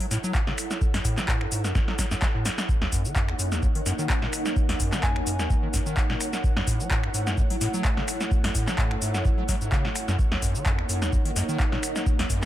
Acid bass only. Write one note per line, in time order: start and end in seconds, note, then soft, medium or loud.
0.00 0.06 F#3 medium
0.11 0.18 A2 loud
0.24 0.33 F#3 loud
0.47 0.53 C#3 medium
0.94 1.00 F#2 medium
1.05 1.19 A2 loud
1.18 1.27 F#3 medium
1.28 1.43 A2 medium
1.41 1.47 F#2 loud
1.52 1.66 G#2 medium
1.64 1.73 F#2 loud
1.75 1.79 F#2 loud
1.88 1.94 F#3 medium
1.99 2.06 F#3 medium
2.11 2.15 F#2 loud
2.22 2.26 F#3 medium
2.35 2.47 A2 loud
2.46 2.50 F#2 medium
2.82 2.88 D#2 medium
2.92 3.07 F#2 loud
3.05 3.14 D#3 medium
3.16 3.30 F#2 medium
3.29 3.34 D#2 loud
3.39 3.53 F#2 medium
3.52 3.61 D#2 loud
3.63 3.67 D#2 loud
3.75 3.81 D#3 medium
3.86 3.93 F#2 loud
3.99 4.08 D#3 loud
4.22 4.28 A#2 medium
4.69 4.75 D#2 medium
4.80 4.94 F#2 loud
4.93 5.01 D#3 medium
5.03 5.18 F#2 medium
5.16 5.22 D#2 loud
5.27 5.41 F#2 medium
5.39 5.48 D#2 loud
5.50 5.54 D#2 loud
5.63 5.69 D#3 medium
5.74 5.81 F#2 loud
5.86 5.95 D#3 loud
6.10 6.16 A#2 medium
6.57 6.63 F#2 medium
6.67 6.82 A2 loud
6.80 6.89 F#3 medium
6.91 7.05 A2 medium
7.04 7.09 F#2 loud
7.14 7.28 G#2 medium
7.27 7.36 F#2 loud
7.38 7.42 F#2 loud
7.50 7.56 F#3 medium
7.61 7.68 A2 loud
7.74 7.83 F#3 loud
7.97 8.03 C#3 medium
8.44 8.50 F#2 medium
8.55 8.69 A2 loud
8.68 8.76 F#3 medium
8.78 8.93 A2 medium
8.91 8.97 F#2 loud
9.02 9.16 G#2 medium
9.14 9.23 F#2 loud
9.25 9.29 F#2 loud
9.38 9.44 F#3 medium
9.49 9.56 F#3 loud
9.61 9.70 G#2 medium
9.72 9.86 C#3 loud
9.85 9.88 A2 medium
10.08 10.17 F#2 loud
10.32 10.38 D#2 medium
10.42 10.57 F#2 loud
10.55 10.64 D#3 medium
10.66 10.80 F#2 medium
10.78 10.84 D#2 loud
10.89 11.03 F#2 medium
11.02 11.11 D#2 loud
11.13 11.17 D#2 loud
11.25 11.31 D#3 medium
11.36 11.43 F#2 loud
11.49 11.58 D#3 loud
11.72 11.78 A#2 medium
12.19 12.25 D#2 medium
12.30 12.44 F#2 loud